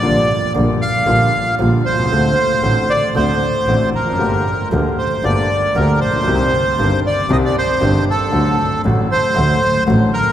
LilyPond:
<<
  \new Staff \with { instrumentName = "Bandoneon" } { \time 4/4 \key g \minor \tempo 4 = 116 d''4 r8 f''4. r8 c''8~ | c''4. d''8 c''4. bes'8~ | bes'4 r8 c''8 d''4 bes'8 c''8~ | c''4. d''8 ees''16 d''16 c''4 a'8~ |
a'4 r8 c''4. r8 bes'8 | }
  \new Staff \with { instrumentName = "Grand piano" } { \clef bass \time 4/4 \key g \minor <bes,, bes, d g bes f'>8 r8 <bes,, bes, d g bes f'>8 r8 <bes,, bes, d g bes f'>8 r8 <bes,, bes, d g bes f'>8 r32 b,,32 c,32 cis,32 | <d, d a c' fis'>8 r8 <a,, a, d a c' fis'>8 r8 <d, d a c' fis'>8 r8 <a,, a, d a c' fis'>8 r32 e,32 f,32 fis,32 | <g,, g, d a bes g'>8 r8 <d, d a bes g'>8 r8 <g,, g, d a bes g'>8 r8 <d, d a bes g'>8 r32 a,,32 bes,,32 b,,32 | <c, c ees g c' g'>8 r8 <g,, g, ees g c' g'>8 r8 <c, c ees g c' g'>8 r8 <g,, g, ees g c' g'>8 r8 |
<d, d fis a fis'>8 r8 <a,, a, d fis a fis'>8 r8 <d, d fis a fis'>8 r8 <a,, a, d fis a fis'>8 r8 | }
  \new Staff \with { instrumentName = "Double bass" } { \clef bass \time 4/4 \key g \minor bes,,8 r8 bes,,8 r8 bes,,8 r8 bes,,8 c,8 | d,8 r8 a,,8 r8 d,8 r8 a,,8 f,,8 | g,,8 r8 d,8 r8 g,,8 r8 d,8 bes,,8 | c,8 r8 g,,8 r8 c,8 r8 g,,8 r8 |
d,8 r8 a,,8 r8 d,8 r8 a,,8 r8 | }
>>